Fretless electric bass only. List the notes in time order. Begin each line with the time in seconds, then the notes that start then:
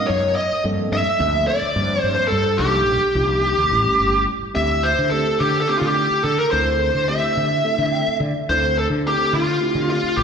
0.10 F#2
0.52 muted fretless electric bass stroke
0.65 G2
0.92 G2
1.07 muted fretless electric bass stroke
1.20 D2
1.62 muted fretless electric bass stroke
1.76 G2
2.04 G2
2.32 G2
2.59 C2
2.87 A#1
3.15 C2
3.57 D#2
3.72 A1
4.00 G1
4.42 muted fretless electric bass stroke
4.56 D2
4.99 D3
5.40 D3
5.81 D3
6.10 muted fretless electric bass stroke
6.24 D3
6.53 D2
6.94 D3
7.37 D3
7.78 D3
8.07 muted fretless electric bass stroke
8.20 D3
8.49 D2
8.90 D3
9.33 D3
9.75 D3
10.03 muted fretless electric bass stroke
10.17 A1